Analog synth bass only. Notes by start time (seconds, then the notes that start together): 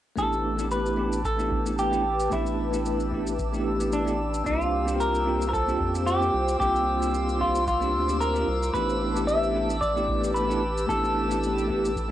0.17 A1
2.32 A1
4.46 C2
5.80 F2
6.34 C2
6.60 C2
7.94 D2
8.47 C2
8.74 A1
10.89 A1